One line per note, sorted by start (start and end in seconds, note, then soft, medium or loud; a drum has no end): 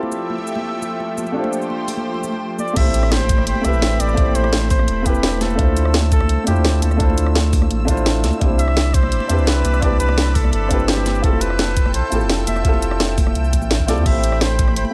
0.00 2.74 F3 medium
0.00 2.74 A3 medium
0.00 1.31 C4 medium
0.00 1.32 E4 medium
0.00 1.33 F4 medium
0.00 1.34 G4 medium
0.00 1.35 A4 medium
0.00 1.34 E5 medium
0.00 high conga medium
0.12 muted conga medium
0.12 shaker medium
0.30 high conga medium
0.38 muted conga soft
0.47 shaker medium
0.55 muted conga medium
0.55 high conga medium
0.82 muted conga soft
0.82 high conga medium
0.82 shaker medium
1.00 muted conga medium
1.18 high conga medium
1.18 shaker medium
1.26 muted conga soft
1.26 shaker soft
1.32 2.72 A3 medium
1.32 2.74 D4 medium
1.32 2.74 F4 medium
1.32 2.75 G4 medium
1.32 2.75 C5 medium
1.37 2.75 G4 medium
1.37 2.76 C5 medium
1.44 muted conga medium
1.44 high conga medium
1.53 shaker medium
1.62 shaker soft
1.70 muted conga soft
1.70 high conga medium
1.88 open hi-hat medium
1.88 muted conga medium
1.88 shaker medium
1.97 high conga medium
2.14 muted conga medium
2.23 high conga medium
2.23 shaker medium
2.32 muted conga medium
2.58 2.78 D5 loud
2.58 muted conga medium
2.58 high conga medium
2.58 shaker medium
2.68 shaker soft
2.73 3.49 A1 loud
2.73 3.60 A3 medium
2.73 3.61 C4 medium
2.73 8.37 C4 medium
2.73 3.63 E4 medium
2.73 5.56 G4 medium
2.73 3.14 E5 loud
2.73 5.56 B5 medium
2.73 kick loud
2.73 closed hi-hat medium
2.73 crash loud
2.73 sub drop medium
2.78 3.63 G4 medium
2.78 3.64 C5 medium
2.86 high conga medium
2.94 closed hi-hat loud
2.94 muted conga medium
2.94 shaker medium
3.03 cross-stick medium
3.12 3.47 C5 loud
3.12 snare loud
3.12 closed hi-hat medium
3.12 muted conga medium
3.12 high conga medium
3.29 kick loud
3.29 closed hi-hat loud
3.29 shaker medium
3.38 cross-stick soft
3.38 muted conga soft
3.38 high conga medium
3.47 3.55 G1 loud
3.47 3.66 C5 loud
3.47 closed hi-hat medium
3.55 muted conga medium
3.61 3.75 C2 medium
3.61 4.13 A3 medium
3.61 4.14 C4 medium
3.61 4.15 E4 medium
3.61 4.02 E5 loud
3.61 closed hi-hat loud
3.61 high conga medium
3.61 shaker medium
3.66 4.16 G4 medium
3.66 4.17 B4 medium
3.73 3.99 A1 medium
3.73 shaker soft
3.82 snare loud
3.82 closed hi-hat medium
3.82 muted conga medium
4.00 4.16 A1 medium
4.00 4.37 D5 loud
4.00 closed hi-hat loud
4.00 muted conga medium
4.00 high conga loud
4.00 shaker medium
4.09 cross-stick soft
4.09 shaker soft
4.14 4.33 A1 loud
4.14 5.01 A3 medium
4.14 5.03 C4 medium
4.14 5.04 E4 medium
4.14 kick loud
4.14 closed hi-hat medium
4.19 5.04 G4 medium
4.19 5.05 C5 medium
4.26 muted conga medium
4.26 high conga loud
4.35 4.87 A1 medium
4.35 4.70 C5 loud
4.35 closed hi-hat loud
4.35 shaker medium
4.44 cross-stick soft
4.44 muted conga medium
4.53 snare loud
4.53 closed hi-hat medium
4.53 high conga medium
4.70 5.08 C5 loud
4.70 kick loud
4.70 open hi-hat medium
4.70 muted conga medium
4.70 shaker medium
4.79 cross-stick soft
4.79 high conga loud
4.88 5.57 E1 medium
4.88 closed hi-hat medium
4.88 muted conga medium
5.02 5.54 A3 medium
5.02 5.56 C4 medium
5.02 5.57 E4 medium
5.02 5.43 G4 loud
5.02 kick medium
5.02 closed hi-hat loud
5.02 high conga medium
5.02 shaker medium
5.07 5.57 G4 medium
5.07 5.58 B4 loud
5.15 muted conga medium
5.15 shaker soft
5.23 snare loud
5.23 closed hi-hat medium
5.32 muted conga medium
5.41 5.94 A4 loud
5.41 snare soft
5.41 closed hi-hat medium
5.41 high conga loud
5.41 shaker medium
5.50 shaker soft
5.55 6.31 D2 loud
5.55 6.42 A3 medium
5.55 6.44 D4 medium
5.55 6.45 E4 medium
5.55 11.19 E6 medium
5.55 kick loud
5.55 closed hi-hat medium
5.55 muted conga medium
5.60 6.46 F4 medium
5.60 6.47 C5 medium
5.67 high conga medium
5.77 closed hi-hat medium
5.77 muted conga medium
5.77 shaker medium
5.85 cross-stick soft
5.94 snare loud
5.94 closed hi-hat medium
5.94 high conga medium
6.03 muted conga medium
6.12 6.45 A4 loud
6.12 kick loud
6.12 closed hi-hat medium
6.12 shaker medium
6.20 cross-stick soft
6.20 muted conga medium
6.20 high conga medium
6.29 6.37 C2 loud
6.29 closed hi-hat medium
6.44 6.58 F2 medium
6.44 6.95 A3 medium
6.44 6.97 D4 medium
6.44 6.98 E4 medium
6.44 6.84 G4 loud
6.44 closed hi-hat medium
6.44 muted conga medium
6.44 shaker medium
6.48 6.99 F4 medium
6.48 7.00 C5 medium
6.48 high conga medium
6.56 6.81 D2 loud
6.56 shaker soft
6.64 snare loud
6.64 closed hi-hat medium
6.64 muted conga medium
6.82 6.98 D2 medium
6.82 7.35 A4 medium
6.82 closed hi-hat medium
6.82 high conga loud
6.82 shaker medium
6.91 cross-stick soft
6.91 muted conga medium
6.91 shaker soft
6.97 7.16 D2 loud
6.97 7.84 A3 medium
6.97 7.85 D4 medium
6.97 7.86 E4 medium
6.97 kick loud
6.97 closed hi-hat medium
7.02 7.87 F4 medium
7.02 7.88 C5 medium
7.10 muted conga medium
7.10 high conga medium
7.18 7.69 D2 medium
7.18 closed hi-hat medium
7.18 shaker medium
7.26 cross-stick soft
7.35 snare loud
7.35 closed hi-hat medium
7.35 muted conga medium
7.35 high conga medium
7.53 kick loud
7.53 open hi-hat medium
7.53 muted conga medium
7.53 shaker medium
7.62 cross-stick soft
7.62 high conga medium
7.71 8.25 A1 medium
7.71 closed hi-hat medium
7.80 muted conga medium
7.85 8.37 A3 medium
7.85 8.38 D4 medium
7.85 8.39 E4 medium
7.85 kick medium
7.85 closed hi-hat medium
7.85 high conga medium
7.85 shaker medium
7.90 8.40 F4 medium
7.90 8.41 C5 loud
7.97 muted conga medium
7.97 shaker soft
8.06 snare loud
8.06 closed hi-hat medium
8.23 8.32 D2 medium
8.23 snare soft
8.23 closed hi-hat medium
8.23 muted conga medium
8.23 high conga medium
8.23 shaker medium
8.33 shaker soft
8.38 9.13 C2 loud
8.38 9.25 C4 medium
8.38 9.26 D4 medium
8.38 9.27 E4 medium
8.38 11.21 D5 medium
8.38 11.21 B5 medium
8.38 kick loud
8.38 closed hi-hat medium
8.43 9.28 G4 medium
8.43 9.29 C5 medium
8.50 high conga medium
8.59 8.96 E5 loud
8.59 closed hi-hat medium
8.59 muted conga soft
8.59 shaker medium
8.68 cross-stick soft
8.76 snare loud
8.76 closed hi-hat medium
8.76 muted conga medium
8.76 high conga medium
8.94 9.49 C5 loud
8.94 kick loud
8.94 closed hi-hat medium
8.94 shaker medium
9.03 cross-stick soft
9.03 muted conga soft
9.03 high conga medium
9.12 9.20 G1 loud
9.12 closed hi-hat medium
9.20 muted conga medium
9.26 9.40 E2 loud
9.26 9.78 C4 medium
9.26 9.79 D4 medium
9.26 9.80 E4 medium
9.26 closed hi-hat medium
9.26 high conga medium
9.26 shaker medium
9.31 9.81 G4 medium
9.31 9.82 B4 medium
9.38 9.63 C2 loud
9.38 shaker soft
9.47 9.84 B4 loud
9.47 snare loud
9.47 closed hi-hat medium
9.47 muted conga medium
9.65 9.81 C2 medium
9.65 closed hi-hat medium
9.65 muted conga medium
9.65 high conga medium
9.65 shaker medium
9.74 cross-stick soft
9.74 shaker soft
9.79 9.98 C2 loud
9.79 10.66 C4 medium
9.79 10.67 D4 medium
9.79 10.68 E4 medium
9.79 9.99 D5 loud
9.79 kick loud
9.79 closed hi-hat medium
9.84 10.69 G4 medium
9.84 10.70 B4 medium
9.91 muted conga medium
9.91 high conga medium
10.00 10.52 C2 medium
10.00 10.37 B4 loud
10.00 closed hi-hat loud
10.00 shaker medium
10.09 cross-stick soft
10.09 muted conga medium
10.18 snare loud
10.18 closed hi-hat medium
10.18 high conga medium
10.35 10.52 A4 loud
10.35 kick loud
10.35 open hi-hat medium
10.35 muted conga medium
10.35 shaker medium
10.44 cross-stick soft
10.44 high conga loud
10.52 11.22 G1 medium
10.52 10.90 A4 loud
10.52 closed hi-hat medium
10.52 muted conga medium
10.67 11.19 C4 medium
10.67 11.21 D4 medium
10.67 11.21 E4 medium
10.67 kick medium
10.67 closed hi-hat medium
10.67 high conga medium
10.67 shaker medium
10.72 11.22 G4 medium
10.72 11.23 B4 loud
10.79 muted conga medium
10.79 shaker soft
10.88 11.25 G4 medium
10.88 snare loud
10.88 closed hi-hat medium
10.97 muted conga medium
11.06 snare soft
11.06 closed hi-hat medium
11.06 high conga medium
11.06 shaker medium
11.15 shaker soft
11.20 11.96 F1 loud
11.20 12.07 C4 medium
11.20 12.09 E4 medium
11.20 12.10 F4 medium
11.20 14.03 A4 medium
11.20 11.43 A4 loud
11.20 14.94 G5 medium
11.20 14.03 E6 medium
11.20 kick loud
11.20 closed hi-hat medium
11.20 muted conga soft
11.25 12.11 G4 medium
11.25 12.11 A4 medium
11.33 high conga medium
11.41 11.94 B4 loud
11.41 closed hi-hat loud
11.41 muted conga medium
11.41 shaker medium
11.50 cross-stick soft
11.59 snare loud
11.59 closed hi-hat medium
11.59 high conga medium
11.68 muted conga soft
11.77 kick loud
11.77 closed hi-hat loud
11.77 shaker medium
11.86 cross-stick soft
11.86 muted conga medium
11.86 high conga medium
11.94 12.02 C2 loud
11.94 12.27 C5 loud
11.94 closed hi-hat medium
12.08 12.22 A1 loud
12.08 12.60 C4 medium
12.08 12.62 E4 medium
12.08 12.63 F4 medium
12.08 closed hi-hat loud
12.08 muted conga soft
12.08 high conga medium
12.08 shaker medium
12.13 12.63 G4 medium
12.13 12.64 A4 medium
12.21 12.46 F1 loud
12.21 shaker soft
12.29 snare loud
12.29 closed hi-hat medium
12.29 muted conga medium
12.47 12.63 F1 medium
12.47 12.80 E5 loud
12.47 closed hi-hat loud
12.47 high conga loud
12.47 shaker medium
12.56 cross-stick soft
12.56 muted conga soft
12.56 shaker soft
12.61 12.81 F1 loud
12.61 13.49 C4 medium
12.61 13.50 E4 medium
12.61 13.51 F4 medium
12.61 kick loud
12.61 closed hi-hat medium
12.66 13.52 G4 medium
12.66 13.53 A4 loud
12.73 muted conga medium
12.73 high conga medium
12.82 13.34 F1 medium
12.82 closed hi-hat loud
12.82 shaker medium
12.91 cross-stick soft
13.00 snare loud
13.00 closed hi-hat medium
13.00 muted conga medium
13.00 high conga medium
13.18 kick loud
13.18 open hi-hat medium
13.18 muted conga medium
13.18 shaker medium
13.26 cross-stick soft
13.26 high conga medium
13.35 13.54 C2 medium
13.35 closed hi-hat medium
13.44 muted conga soft
13.44 shaker soft
13.53 13.90 A1 medium
13.53 kick medium
13.53 closed hi-hat loud
13.53 high conga medium
13.53 shaker medium
13.61 muted conga medium
13.61 shaker soft
13.71 snare loud
13.71 closed hi-hat medium
13.79 kick medium
13.87 13.99 C2 loud
13.87 14.03 C4 medium
13.87 14.03 E4 medium
13.87 14.04 F4 medium
13.87 14.04 G4 medium
13.87 14.05 A4 loud
13.87 14.08 D5 medium
13.87 snare soft
13.87 closed hi-hat loud
13.87 muted conga medium
13.87 high conga loud
13.87 shaker medium
13.97 14.05 F2 medium
13.97 shaker soft
14.03 14.78 A1 loud
14.03 14.89 A3 medium
14.03 14.91 C4 medium
14.03 14.92 E4 medium
14.03 14.43 E5 loud
14.03 14.94 B5 medium
14.03 kick loud
14.03 closed hi-hat medium
14.03 crash medium
14.08 14.93 G4 medium
14.08 14.94 C5 medium
14.14 high conga loud
14.23 closed hi-hat loud
14.23 muted conga soft
14.23 shaker medium
14.32 cross-stick soft
14.40 14.76 C5 loud
14.40 snare loud
14.40 closed hi-hat medium
14.40 muted conga medium
14.40 high conga medium
14.59 kick loud
14.59 closed hi-hat loud
14.59 shaker medium
14.68 cross-stick soft
14.68 muted conga medium
14.68 high conga loud
14.76 14.84 G1 loud
14.76 14.84 C5 medium
14.76 closed hi-hat medium
14.85 muted conga medium